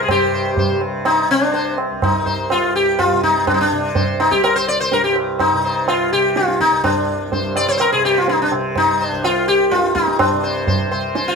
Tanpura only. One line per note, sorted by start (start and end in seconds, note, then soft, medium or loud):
0.00 1.90 C2 medium
0.00 0.08 G2 medium
0.00 0.69 C3 medium
0.08 2.51 G2 medium
0.69 1.29 C3 medium
1.29 3.11 C3 medium
1.91 4.31 C2 medium
2.51 4.92 G2 medium
3.11 3.72 C3 medium
3.72 5.52 C3 medium
4.32 6.72 C2 medium
4.92 7.31 G2 medium
5.52 6.12 C3 medium
6.12 7.92 C3 medium
6.72 9.11 C2 medium
7.32 9.71 G2 medium
7.92 8.51 C3 medium
8.51 10.32 C3 medium
9.11 11.35 C2 medium
9.71 11.35 G2 medium
10.32 10.92 C3 medium
10.92 11.35 C3 medium